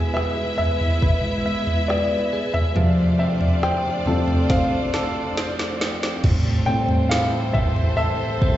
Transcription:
0.00 2.77 E2 soft
0.00 2.78 B2 soft
0.00 2.72 G#3 medium
0.00 2.78 G#3 medium
0.00 2.72 B3 medium
0.00 2.72 E4 medium
0.00 2.76 E4 medium
0.00 2.32 G#4 medium
0.00 2.72 B4 medium
0.00 2.72 E5 medium
0.00 2.78 G#5 medium
0.14 1.01 B4 medium
0.14 0.56 E5 medium
0.14 cross-stick medium
0.58 1.92 E5 medium
0.58 1.45 E5 medium
0.58 floor tom medium
0.81 floor tom medium
1.02 1.88 B4 medium
1.02 kick medium
1.02 floor tom medium
1.46 2.85 E5 medium
1.67 floor tom soft
1.88 2.85 B4 medium
1.88 2.56 D5 medium
1.88 cross-stick medium
2.33 2.85 G#4 medium
2.54 3.15 E5 medium
2.54 floor tom medium
2.75 3.33 F2 soft
2.75 6.20 F2 medium
2.75 3.33 C3 soft
2.75 3.34 F3 medium
2.75 6.24 F3 medium
2.75 6.20 A3 medium
2.75 6.20 D4 medium
2.75 6.20 F4 medium
2.75 6.20 C5 medium
2.75 6.20 D5 medium
2.75 floor tom medium
3.19 5.81 C4 medium
3.19 3.64 E5 medium
3.41 floor tom medium
3.63 4.50 C5 medium
3.63 4.52 G5 medium
3.63 cross-stick loud
4.06 4.46 F2 soft
4.06 4.46 C3 soft
4.06 4.47 F3 soft
4.06 4.94 A4 medium
4.06 floor tom soft
4.28 floor tom medium
4.50 5.37 C5 medium
4.50 5.33 F5 medium
4.50 kick medium
4.50 snare medium
4.94 7.98 A4 medium
4.94 snare medium
5.37 7.11 C5 medium
5.37 snare medium
5.59 snare medium
5.81 6.67 C4 medium
5.81 snare medium
6.03 snare medium
6.24 8.57 A2 medium
6.24 8.57 E3 medium
6.24 8.57 G3 medium
6.24 8.57 C4 medium
6.24 8.57 A4 medium
6.24 8.57 C5 medium
6.24 kick loud
6.24 floor tom loud
6.24 crash medium
6.66 7.94 A2 medium
6.66 7.94 G3 soft
6.66 7.54 C4 medium
6.66 7.94 C4 medium
6.66 7.11 G5 medium
6.88 floor tom medium
7.09 8.57 E4 medium
7.09 7.55 F5 medium
7.09 snare loud
7.53 8.41 C4 medium
7.53 7.95 E5 medium
7.53 kick medium
7.53 floor tom medium
7.76 floor tom medium
7.97 8.57 A4 medium
7.97 8.57 E5 medium
8.42 8.57 C4 medium
8.42 kick medium

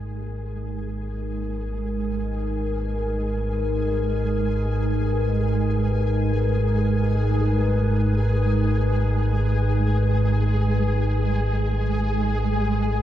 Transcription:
0.00 13.02 G#1 medium
0.00 13.02 G#2 medium
0.00 13.02 G#3 medium
0.00 13.02 D#4 medium
0.00 13.02 G#4 medium
0.00 13.02 A#4 medium
1.53 13.02 B4 medium

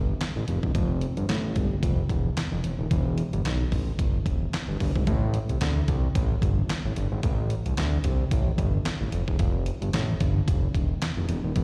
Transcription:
0.00 0.14 G1 medium
0.21 snare loud
0.21 clap medium
0.21 closed hi-hat loud
0.36 0.45 A1 medium
0.48 0.59 F1 medium
0.48 closed hi-hat medium
0.63 0.72 E1 medium
0.63 kick medium
0.75 1.07 F1 loud
0.75 kick loud
0.75 closed hi-hat medium
1.01 closed hi-hat medium
1.17 1.26 G1 medium
1.17 closed hi-hat medium
1.29 1.57 A1 loud
1.29 snare loud
1.29 clap medium
1.29 closed hi-hat loud
1.56 1.76 G1 medium
1.56 kick medium
1.56 closed hi-hat medium
1.83 2.03 F1 loud
1.83 kick loud
1.83 closed hi-hat loud
2.09 2.30 E1 loud
2.09 kick medium
2.09 closed hi-hat medium
2.37 snare loud
2.37 clap loud
2.37 closed hi-hat loud
2.52 2.61 F1 medium
2.64 2.75 E1 medium
2.64 closed hi-hat medium
2.79 2.88 D#1 medium
2.91 3.23 E1 loud
2.91 kick loud
2.91 closed hi-hat medium
3.18 closed hi-hat medium
3.33 3.42 G1 medium
3.33 closed hi-hat soft
3.45 3.66 B1 medium
3.45 snare loud
3.45 clap medium
3.45 closed hi-hat loud
3.72 3.92 A1 medium
3.72 kick medium
3.72 open hi-hat medium
3.99 4.19 G1 medium
3.99 kick loud
3.99 closed hi-hat loud
4.26 4.46 E1 medium
4.26 kick medium
4.26 closed hi-hat medium
4.53 snare loud
4.53 clap loud
4.53 closed hi-hat medium
4.68 4.77 G1 medium
4.80 4.92 G1 loud
4.80 kick medium
4.80 open hi-hat medium
4.96 5.05 G#1 medium
4.96 kick loud
5.07 5.39 A1 loud
5.07 kick loud
5.07 closed hi-hat medium
5.34 closed hi-hat medium
5.49 5.58 C2 medium
5.49 closed hi-hat medium
5.61 5.82 D2 loud
5.61 snare loud
5.61 clap medium
5.61 closed hi-hat loud
5.88 6.09 C2 medium
5.88 kick medium
5.88 closed hi-hat medium
6.15 6.36 A1 loud
6.15 kick loud
6.15 closed hi-hat loud
6.42 6.62 G1 medium
6.42 kick medium
6.42 closed hi-hat medium
6.69 snare loud
6.69 clap loud
6.69 closed hi-hat loud
6.85 6.94 A1 medium
6.96 7.08 G1 medium
6.96 closed hi-hat medium
7.12 7.21 G#1 medium
7.23 7.55 A1 loud
7.23 kick loud
7.23 closed hi-hat medium
7.50 closed hi-hat medium
7.66 7.75 C2 medium
7.66 closed hi-hat medium
7.77 7.98 D2 loud
7.77 snare loud
7.77 clap medium
7.77 closed hi-hat loud
8.04 8.25 C2 loud
8.04 kick medium
8.04 closed hi-hat medium
8.31 8.52 A1 medium
8.31 kick loud
8.31 closed hi-hat loud
8.58 8.79 G1 loud
8.58 kick medium
8.58 closed hi-hat medium
8.85 snare loud
8.85 clap loud
8.85 closed hi-hat loud
9.01 9.10 A1 medium
9.12 9.24 F1 medium
9.12 closed hi-hat medium
9.28 9.37 E1 loud
9.28 kick loud
9.39 9.71 F1 loud
9.39 kick loud
9.39 closed hi-hat medium
9.66 closed hi-hat medium
9.82 9.91 G1 medium
9.82 closed hi-hat medium
9.93 10.14 A1 loud
9.93 snare loud
9.93 clap medium
9.93 closed hi-hat loud
10.20 10.41 G1 medium
10.20 kick medium
10.20 closed hi-hat medium
10.48 10.68 F1 loud
10.48 kick loud
10.48 closed hi-hat loud
10.75 10.95 E1 loud
10.75 kick medium
10.75 closed hi-hat medium
11.02 snare loud
11.02 clap loud
11.02 closed hi-hat loud
11.17 11.26 F1 medium
11.29 11.40 E1 loud
11.29 closed hi-hat medium
11.44 11.53 D#1 medium
11.56 11.64 E1 loud
11.56 kick loud
11.56 closed hi-hat medium

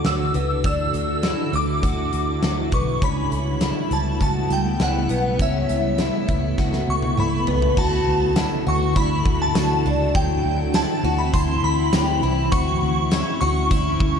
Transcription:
0.00 2.98 D3 medium
0.00 2.98 D4 medium
0.00 7.73 E4 medium
0.00 2.98 F#4 medium
0.00 2.98 A4 medium
0.05 0.31 D2 medium
0.05 0.35 F#4 medium
0.05 0.61 E6 medium
0.05 snare medium
0.05 closed hi-hat medium
0.34 0.61 C#2 medium
0.34 0.64 B3 medium
0.34 closed hi-hat soft
0.64 0.90 D2 medium
0.64 1.24 D4 medium
0.64 1.57 E6 loud
0.64 kick loud
0.64 closed hi-hat medium
0.94 1.33 D2 medium
0.94 closed hi-hat soft
1.23 1.52 E4 medium
1.23 snare loud
1.23 closed hi-hat medium
1.53 1.79 D2 medium
1.53 1.83 E4 medium
1.53 2.77 D6 medium
1.53 closed hi-hat soft
1.83 2.09 D2 medium
1.83 2.42 F#4 medium
1.83 kick medium
1.83 closed hi-hat medium
2.13 2.39 D2 medium
2.13 closed hi-hat soft
2.43 2.69 D2 loud
2.43 2.72 F#4 medium
2.43 snare medium
2.43 closed hi-hat medium
2.72 2.98 B1 medium
2.72 3.02 B3 medium
2.72 3.04 C#6 medium
2.72 kick medium
2.72 closed hi-hat soft
3.02 3.28 C#2 medium
3.02 7.73 C#3 medium
3.02 5.37 G3 medium
3.02 7.73 A3 medium
3.02 7.73 B3 medium
3.02 3.62 C#4 medium
3.02 3.95 B5 medium
3.02 kick loud
3.02 closed hi-hat medium
3.32 3.71 C#2 medium
3.32 closed hi-hat medium
3.61 3.91 E4 medium
3.61 snare loud
3.61 closed hi-hat medium
3.91 4.17 C#2 medium
3.91 4.21 E4 medium
3.91 4.21 A5 medium
3.91 closed hi-hat soft
4.20 4.47 C#2 loud
4.20 4.80 F#4 medium
4.20 4.52 A5 medium
4.20 kick medium
4.20 closed hi-hat medium
4.50 4.76 C#2 medium
4.50 4.82 G5 medium
4.50 closed hi-hat soft
4.80 5.06 C#2 loud
4.80 5.10 E4 medium
4.80 5.42 F#5 medium
4.80 snare medium
4.80 closed hi-hat medium
5.09 5.36 B1 medium
5.09 5.40 B3 medium
5.09 closed hi-hat soft
5.39 5.66 C#2 medium
5.39 5.99 C#4 medium
5.39 7.74 A4 medium
5.39 7.45 E5 medium
5.39 kick loud
5.39 closed hi-hat medium
5.69 6.08 C#2 medium
5.69 closed hi-hat medium
5.98 6.28 E4 medium
5.98 snare loud
5.98 closed hi-hat medium
6.28 6.55 C#2 medium
6.28 6.58 E4 medium
6.28 kick medium
6.28 closed hi-hat soft
6.58 6.84 C#2 medium
6.58 7.18 F#4 medium
6.58 kick medium
6.58 snare medium
6.73 snare soft
6.88 7.14 C#2 medium
6.88 7.20 C#6 medium
7.02 high tom medium
7.17 7.44 C#2 loud
7.17 7.48 E4 medium
7.17 7.80 B5 medium
7.17 mid tom medium
7.47 7.74 C#2 medium
7.47 7.77 B3 medium
7.47 floor tom medium
7.62 floor tom medium
7.77 8.03 D2 loud
7.77 10.13 D3 medium
7.77 10.13 D4 medium
7.77 14.20 E4 medium
7.77 8.36 F#4 medium
7.77 10.13 F#4 medium
7.77 10.13 A4 medium
7.77 8.33 A5 medium
7.77 kick loud
7.77 crash loud
8.07 8.46 D2 medium
8.36 8.66 E4 medium
8.36 snare loud
8.36 closed hi-hat medium
8.36 tambourine medium
8.67 8.93 D2 medium
8.67 8.96 F#4 medium
8.67 8.98 C#6 medium
8.96 9.22 D2 loud
8.96 9.55 E4 medium
8.96 9.42 B5 medium
8.96 kick medium
8.96 closed hi-hat medium
9.25 9.52 D2 medium
9.25 kick loud
9.42 10.18 A5 medium
9.55 9.82 D2 loud
9.55 9.85 F#4 medium
9.55 snare loud
9.55 closed hi-hat medium
9.55 tambourine medium
9.85 10.11 C#2 medium
9.85 10.15 D4 medium
10.15 10.41 D2 loud
10.15 12.50 E3 medium
10.15 10.74 F#3 medium
10.15 12.50 C4 medium
10.15 10.76 G5 medium
10.15 kick loud
10.15 closed hi-hat medium
10.45 10.84 D2 medium
10.74 11.04 E4 medium
10.74 11.20 A5 medium
10.74 snare loud
10.74 closed hi-hat medium
10.74 tambourine medium
11.04 11.30 D2 loud
11.04 11.33 F#4 medium
11.19 11.34 B5 medium
11.33 11.60 D2 loud
11.33 11.93 E4 medium
11.33 11.64 C6 loud
11.33 kick medium
11.33 closed hi-hat medium
11.63 11.89 D2 loud
11.63 12.55 B5 loud
11.93 12.19 D2 loud
11.93 12.23 G4 medium
11.93 snare loud
11.93 closed hi-hat medium
11.93 tambourine medium
12.23 12.49 C2 medium
12.23 12.52 E4 medium
12.52 12.78 D2 loud
12.52 14.20 A3 medium
12.52 14.20 C#4 medium
12.52 13.12 F#4 loud
12.52 13.39 C#6 loud
12.52 kick loud
12.52 closed hi-hat medium
12.82 13.21 D2 medium
13.11 13.41 E4 medium
13.11 snare loud
13.11 closed hi-hat medium
13.11 tambourine medium
13.41 13.68 D2 loud
13.41 13.70 F#4 medium
13.41 14.20 C#6 loud
13.71 13.97 D2 loud
13.71 14.20 E4 medium
13.71 kick medium
13.71 closed hi-hat medium
14.00 14.20 D2 loud
14.00 kick loud

